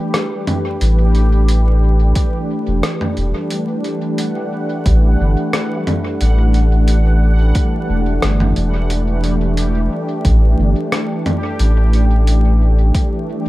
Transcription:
Already playing: analog synth pad E3 A3 D4 G4 B4, synth texture G3 G4
0.14 cross-stick, closed hi-hat
0.47 closed hi-hat, mid tom
0.81 sub bass A1, closed hi-hat
1.15 closed hi-hat
1.48 closed hi-hat
2.15 kick, closed hi-hat
2.67 sub bass E1
2.83 cross-stick, closed hi-hat
3.01 mid tom
3.17 sub bass E1, closed hi-hat
3.50 synth texture F#5, closed hi-hat
3.84 closed hi-hat
4.18 closed hi-hat
4.86 sub bass A1, kick, closed hi-hat
5.20 sub bass G1
5.53 cross-stick, closed hi-hat
5.87 closed hi-hat, mid tom
6.21 sub bass A1, closed hi-hat
6.54 closed hi-hat
6.88 closed hi-hat
7.55 kick, closed hi-hat
7.89 sub bass E1
8.22 sub bass G1, cross-stick, closed hi-hat
8.40 mid tom
8.56 sub bass E1, closed hi-hat
8.90 synth texture G4, closed hi-hat
9.24 closed hi-hat
9.57 closed hi-hat
10.25 sub bass A1, kick, closed hi-hat
10.58 sub bass G1
10.92 cross-stick, closed hi-hat
11.26 closed hi-hat, mid tom
11.59 sub bass A1, closed hi-hat
11.93 closed hi-hat
12.27 closed hi-hat
12.95 kick, closed hi-hat

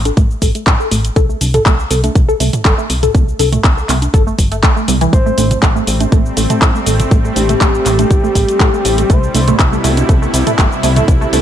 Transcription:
Already playing: analog synth bass A1
0.05 synth arpeggio sound A4, closed hi-hat, high conga, shaker
0.17 analog synth bass A1, synth arpeggio sound A3, kick, closed hi-hat, shaker
0.31 shaker
0.42 analog synth bass A1, synth arpeggio sound A4, kick, open hi-hat, shaker
0.55 synth arpeggio sound A3, closed hi-hat, shaker
0.67 analog synth bass A2, kick, clap, closed hi-hat, shaker
0.80 synth arpeggio sound A4, shaker
0.91 analog synth bass A1, synth arpeggio sound A3, open hi-hat, shaker
1.05 closed hi-hat, shaker
1.16 analog synth bass C2, synth arpeggio sound A4, kick, closed hi-hat, shaker
1.29 synth arpeggio sound A3, shaker
1.41 analog synth bass C2, open hi-hat, high conga, shaker
1.54 synth arpeggio sound A4, closed hi-hat, mid tom, shaker
1.66 analog synth bass C2, synth arpeggio sound A3, kick, clap, closed hi-hat, shaker
1.79 shaker
1.91 analog synth bass C2, synth arpeggio sound A4, open hi-hat, shaker
2.04 synth arpeggio sound A3, closed hi-hat, high conga, shaker
2.15 analog synth bass C2, kick, closed hi-hat, shaker
2.29 synth arpeggio sound A4, shaker
2.40 analog synth bass C2, synth arpeggio sound A3, open hi-hat, shaker
2.53 closed hi-hat, mid tom, shaker
2.65 analog synth bass G1, synth arpeggio sound A4, kick, clap, closed hi-hat, shaker
2.78 synth arpeggio sound A3, shaker
2.90 analog synth bass C2, open hi-hat, shaker
3.03 synth arpeggio sound A4, closed hi-hat, mid tom, shaker
3.15 analog synth bass C2, synth arpeggio sound A3, kick, closed hi-hat, shaker
3.28 shaker
3.39 analog synth bass C2, synth arpeggio sound A4, open hi-hat, high conga, shaker
3.52 synth arpeggio sound A3, closed hi-hat, mid tom, shaker
3.64 analog synth bass C2, kick, clap, closed hi-hat, shaker
3.77 synth arpeggio sound A4, shaker
3.89 analog synth bass C2, synth arpeggio sound A3, clap, open hi-hat, shaker
4.02 closed hi-hat, high conga, shaker
4.14 analog synth bass G1, synth arpeggio sound A4, kick, closed hi-hat, shaker
4.27 synth arpeggio sound A3, shaker
4.39 analog synth bass G1, kick, open hi-hat, shaker
4.52 synth arpeggio sound A3, closed hi-hat, shaker
4.63 analog synth bass C2, synth arpeggio sound A3, kick, clap, closed hi-hat, shaker
4.76 synth arpeggio sound A3, shaker
4.88 analog synth bass C2, synth arpeggio sound G3, open hi-hat, shaker
5.01 synth arpeggio sound E3, closed hi-hat, shaker
5.13 analog synth bass A1, supersaw synth G3 A3 C4, soft synth lead C5, kick, closed hi-hat, shaker
5.26 synth arpeggio sound A3, shaker
5.38 analog synth bass A1, synth arpeggio sound A3, open hi-hat, high conga, shaker
5.51 closed hi-hat, mid tom, shaker
5.62 analog synth bass A1, synth arpeggio sound A3, kick, clap, closed hi-hat, shaker
5.76 synth arpeggio sound A3, shaker
5.87 analog synth bass A1, open hi-hat, shaker
6.00 synth arpeggio sound A3, closed hi-hat, high conga, shaker
6.12 analog synth bass A1, synth arpeggio sound A3, kick, closed hi-hat, shaker
6.26 shaker
6.37 analog synth bass A1, synth arpeggio sound A3, open hi-hat, shaker
6.50 synth arpeggio sound A3, closed hi-hat, mid tom, shaker
6.62 analog synth bass A2, kick, clap, closed hi-hat, shaker
6.75 synth arpeggio sound A3, shaker
6.86 analog synth bass A1, synth arpeggio sound A3, open hi-hat, shaker
7.00 closed hi-hat, mid tom, shaker
7.11 analog synth bass A1, synth arpeggio sound A3, kick, closed hi-hat, shaker
7.24 synth arpeggio sound A3, shaker
7.36 analog synth bass A1, soft synth lead G4, open hi-hat, high conga, shaker
7.49 synth arpeggio sound A3, closed hi-hat, mid tom, shaker
7.61 analog synth bass A1, synth arpeggio sound A3, kick, clap, closed hi-hat, shaker
7.75 shaker
7.86 analog synth bass A1, synth arpeggio sound A3, clap, open hi-hat, shaker
7.99 synth arpeggio sound A3, closed hi-hat, high conga, shaker
8.11 analog synth bass A1, kick, closed hi-hat, shaker
8.24 synth arpeggio sound A3, shaker
8.35 analog synth bass A1, synth arpeggio sound A3, kick, open hi-hat, shaker
8.48 closed hi-hat, shaker
8.60 analog synth bass A2, synth arpeggio sound A3, kick, clap, closed hi-hat, shaker
8.73 synth arpeggio sound A3, shaker
8.85 analog synth bass A1, open hi-hat, shaker
8.98 synth arpeggio sound A3, closed hi-hat, shaker
9.10 analog synth bass C2, supersaw synth B2 C3 E4, synth arpeggio sound A3, soft synth lead C5, kick, closed hi-hat, shaker
9.23 shaker
9.35 analog synth bass C2, synth arpeggio sound A3, open hi-hat, high conga, shaker
9.48 synth arpeggio sound A3, closed hi-hat, mid tom, shaker
9.59 analog synth bass C2, kick, clap, closed hi-hat, shaker
9.73 synth arpeggio sound A3, shaker
9.84 analog synth bass C2, synth arpeggio sound A3, open hi-hat, shaker
9.97 closed hi-hat, high conga, shaker
10.09 analog synth bass C2, synth arpeggio sound A3, kick, closed hi-hat, shaker
10.22 synth arpeggio sound A3, shaker
10.34 analog synth bass C2, open hi-hat, shaker
10.47 synth arpeggio sound A3, closed hi-hat, mid tom, shaker
10.58 analog synth bass G1, synth arpeggio sound A3, kick, clap, closed hi-hat, shaker
10.72 shaker
10.83 analog synth bass C2, synth arpeggio sound A3, open hi-hat, shaker
10.96 synth arpeggio sound A3, closed hi-hat, mid tom, shaker
11.08 analog synth bass C2, supersaw synth A3, kick, closed hi-hat, shaker
11.21 synth arpeggio sound A3, shaker
11.33 analog synth bass C2, synth arpeggio sound A3, soft synth lead E4, open hi-hat, high conga, shaker

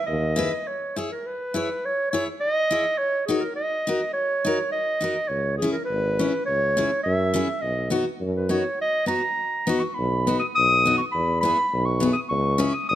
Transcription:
0.07 tuba D#2, clarinet D#5
0.36 steel-string acoustic guitar E4 G#4 B4
0.67 clarinet C#5
0.96 steel-string acoustic guitar E4 G#4 C#5, clarinet G#4
1.12 clarinet A#4
1.26 clarinet B4
1.54 steel-string acoustic guitar E4 G#4 C#5
1.85 clarinet C#5
2.11 steel-string acoustic guitar E4 G#4 C#5, clarinet C#5
2.41 clarinet D#5
2.71 steel-string acoustic guitar E4 G#4 C#5
2.98 clarinet C#5
3.26 steel-string acoustic guitar D#4 F#4 A#4, clarinet G#4
3.41 clarinet A#4
3.56 clarinet D#5
3.87 steel-string acoustic guitar D#4 F#4 A#4
4.13 clarinet C#5
4.45 steel-string acoustic guitar D#4 F#4 A#4
4.72 clarinet D#5
5.01 steel-string acoustic guitar D#4 F#4 A#4
5.28 tuba C#2, clarinet C#5
5.58 clarinet G#4
5.62 steel-string acoustic guitar C#4 E4 G#4
5.72 clarinet A#4
5.85 clarinet B4
5.90 tuba G#1
6.19 steel-string acoustic guitar C#4 E4 G#4
6.46 tuba C#2, clarinet C#5
6.77 steel-string acoustic guitar C#4 E4 G#4
7.03 tuba F#2, clarinet E5
7.34 steel-string acoustic guitar C#4 E4 G#4
7.61 tuba B1, clarinet D#5
7.90 steel-string acoustic guitar B3 D#4 F#4
8.21 tuba F#2
8.36 clarinet B4
8.49 steel-string acoustic guitar B3 D#4 F#4, clarinet C#5
8.81 clarinet D#5
9.06 steel-string acoustic guitar B3 D#4 F#4, clarinet A#5
9.67 steel-string acoustic guitar B3 D#4 F#4
9.80 clarinet C#6
9.94 clarinet B5
9.98 tuba B1
10.27 steel-string acoustic guitar B3 D#4 F#4
10.40 clarinet D#6
10.55 tuba B1, clarinet D#6
10.86 steel-string acoustic guitar B3 D#4 F#4
10.98 clarinet C#6
11.12 tuba E2, clarinet B5
11.41 steel-string acoustic guitar B3 E4, clarinet B5
11.45 steel-string acoustic guitar G#4
11.73 tuba B1
11.85 clarinet C#6
12.00 steel-string acoustic guitar B3 E4 G#4
12.13 clarinet D#6
12.29 tuba C#2, clarinet C#6
12.58 steel-string acoustic guitar C#4 E4 G#4
12.74 clarinet D#6
12.89 tuba G#1, clarinet D#6

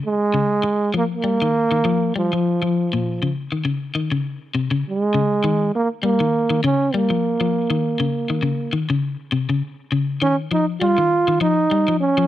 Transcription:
0.06 trombone G#3
0.34 clean electric guitar C#3
0.63 muted clean electric guitar stroke
0.94 clean electric guitar F3, trombone A#3
1.14 trombone A#3
1.24 clean electric guitar G3
1.42 clean electric guitar D#3
1.71 clean electric guitar D#3
1.85 clean electric guitar F3
2.16 trombone F3, clean electric guitar G3
2.33 clean electric guitar F3
2.62 clean electric guitar F3
2.93 clean electric guitar A#2
3.23 clean electric guitar C#3
3.52 clean electric guitar D#3
3.65 clean electric guitar C#3
3.95 clean electric guitar D#3
4.12 clean electric guitar C#3
4.55 clean electric guitar C3
4.71 clean electric guitar C#3
4.89 trombone G#3
5.14 clean electric guitar C#3
5.44 clean electric guitar D#3
5.75 trombone A#3
6.03 clean electric guitar G3, trombone A#3
6.20 clean electric guitar D#3
6.50 clean electric guitar D#3
6.64 clean electric guitar C#3, trombone C#4
6.94 clean electric guitar G3, trombone A#3
7.10 clean electric guitar F3
7.41 clean electric guitar F3
7.70 clean electric guitar D#3
8.00 clean electric guitar C#3
8.30 clean electric guitar D#3
8.43 clean electric guitar C#3
8.73 clean electric guitar D#3
8.90 clean electric guitar C#3
9.32 clean electric guitar C3
9.49 clean electric guitar C#3
9.92 clean electric guitar C#3
10.22 clean electric guitar D#3, trombone C#4
10.51 clean electric guitar F3, trombone D#4
10.81 clean electric guitar G3, trombone F4
10.98 clean electric guitar D#3
11.28 clean electric guitar D#3
11.41 clean electric guitar F3, trombone D#4
11.71 clean electric guitar G3
11.88 clean electric guitar F3
12.00 trombone C#4
12.18 clean electric guitar F3

